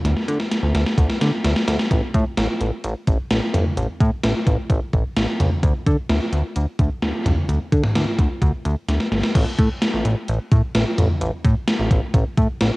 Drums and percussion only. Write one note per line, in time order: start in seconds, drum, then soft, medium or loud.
0.05 snare medium
0.05 closed hi-hat medium
0.17 snare medium
0.28 closed hi-hat medium
0.40 snare medium
0.51 snare medium
0.51 closed hi-hat medium
0.75 snare medium
0.75 closed hi-hat medium
0.86 snare medium
0.98 kick medium
0.98 closed hi-hat medium
1.10 snare medium
1.21 snare loud
1.21 closed hi-hat medium
1.44 snare loud
1.44 closed hi-hat medium
1.56 snare medium
1.68 snare loud
1.68 closed hi-hat medium
1.79 snare loud
1.91 kick loud
1.91 closed hi-hat medium
2.14 kick medium
2.14 closed hi-hat medium
2.37 snare loud
2.37 closed hi-hat medium
2.61 closed hi-hat medium
2.84 closed hi-hat medium
3.07 kick medium
3.07 closed hi-hat medium
3.30 snare loud
3.30 closed hi-hat medium
3.54 closed hi-hat medium
3.54 mid tom loud
3.77 closed hi-hat medium
4.00 kick medium
4.00 closed hi-hat medium
4.23 snare loud
4.23 closed hi-hat medium
4.47 kick medium
4.47 closed hi-hat medium
4.70 kick medium
4.70 closed hi-hat medium
4.93 kick medium
4.93 closed hi-hat medium
5.16 snare loud
5.16 closed hi-hat medium
5.40 closed hi-hat medium
5.40 mid tom medium
5.63 kick loud
5.63 closed hi-hat medium
5.86 kick medium
5.86 closed hi-hat medium
6.09 snare loud
6.09 closed hi-hat medium
6.33 closed hi-hat medium
6.56 closed hi-hat medium
6.79 kick medium
6.79 closed hi-hat medium
7.02 snare loud
7.02 closed hi-hat medium
7.26 closed hi-hat medium
7.26 mid tom loud
7.49 closed hi-hat medium
7.72 kick medium
7.72 closed hi-hat medium
7.84 mid tom loud
7.96 snare loud
7.96 closed hi-hat medium
8.19 kick medium
8.19 closed hi-hat medium
8.42 kick medium
8.42 closed hi-hat medium
8.65 closed hi-hat medium
8.89 snare medium
8.89 closed hi-hat medium
9.00 snare medium
9.12 snare loud
9.12 closed hi-hat medium
9.23 snare loud
9.35 kick loud
9.35 closed hi-hat medium
9.35 crash loud
9.59 kick loud
9.59 closed hi-hat medium
9.82 snare loud
9.82 closed hi-hat medium
10.05 closed hi-hat medium
10.28 closed hi-hat medium
10.51 kick loud
10.51 closed hi-hat medium
10.75 snare loud
10.75 closed hi-hat medium
10.98 closed hi-hat medium
10.98 mid tom loud
11.21 closed hi-hat medium
11.45 kick loud
11.45 closed hi-hat medium
11.68 snare loud
11.68 closed hi-hat medium
11.91 kick medium
11.91 closed hi-hat medium
12.14 kick medium
12.14 closed hi-hat medium
12.37 kick loud
12.37 closed hi-hat medium
12.61 snare loud
12.61 closed hi-hat medium